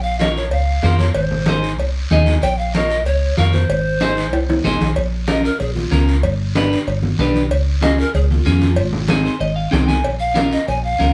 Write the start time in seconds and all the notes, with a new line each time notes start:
Already playing: A#1
0.03 F5
0.19 F4 A#4 C#5 D#5, high conga, short guiro
0.36 C#5, short guiro
0.51 C#2 F5, cowbell, high conga, long guiro
0.83 F2 F4 A#4 C5, high conga, low timbale, short guiro
0.99 C#5, high conga, short guiro
1.15 G#1 C5, cowbell, high conga, long guiro
1.31 low conga
1.46 D#4 G#4 C5, high conga, short guiro
1.63 short guiro
1.79 C2, cowbell, high conga, long guiro
2.10 D#2 D#4 G#4 D#5, high conga, low conga, short guiro
2.26 high conga, short guiro
2.42 A#1 G5, cowbell, high conga, long guiro
2.58 F5
2.74 F4 A#4 C#5 D#5, high conga, short guiro
2.90 short guiro
3.05 C#2 C#5, cowbell, high conga, long guiro
3.37 F2 F4 A#4 C#5 F5, high conga, short guiro
3.52 C5, high conga, short guiro
3.69 G#1, cowbell, high conga, long guiro
4.01 D#4 G#4 C5, high conga, short guiro
4.17 short guiro
4.33 C2, cowbell, high conga, high timbale, long guiro
4.49 high conga, high timbale
4.64 G#1 D#4 G#4 C5, high conga, low conga, short guiro
4.81 A#1, high conga, low timbale, short guiro
4.96 A#1, cowbell, high conga, long guiro
5.28 C#4 F4 A#4 D#5, high conga, short guiro
5.45 A#4, short guiro
5.60 A#1 G#4, cowbell, high conga, long guiro
5.74 F4, high conga
5.91 C#2 C#4 F4 A#4, high conga, short guiro
6.08 short guiro
6.23 G1, cowbell, high conga, long guiro
6.55 D4 G4 B4, high conga, short guiro
6.72 short guiro
6.87 G1, cowbell, high conga, long guiro
7.03 high conga
7.19 B1 D4 G4 B4, high conga, low conga, short guiro
7.34 high conga, short guiro
7.51 C#2, cowbell, high conga, long guiro
7.81 C#4 F4 G#4 D#5, high conga, short guiro
7.98 A#4, short guiro
8.14 C#2 G#4, cowbell, high conga, long guiro
8.30 F4, high conga
8.45 F2 C#4 F4 G#4, high conga, short guiro
8.61 high conga, short guiro
8.76 G#1, cowbell, high conga, long guiro
8.93 low conga
9.08 C4 D#4 G#4, high conga, short guiro
9.25 C5, short guiro
9.40 G#1 D#5, cowbell, high conga, long guiro
9.56 F5
9.71 C2 C4 D#4 G#4 G5, high conga, low conga, short guiro
9.88 G#5, high conga, short guiro
10.04 A#1, cowbell, high conga, long guiro
10.20 F5
10.34 C#4 F4 A#4, high conga, short guiro
10.51 D#5, short guiro
10.68 A#1 G#5, cowbell, high conga, long guiro
10.84 F5
10.99 C#2 C#4 F4 A#4, high conga, short guiro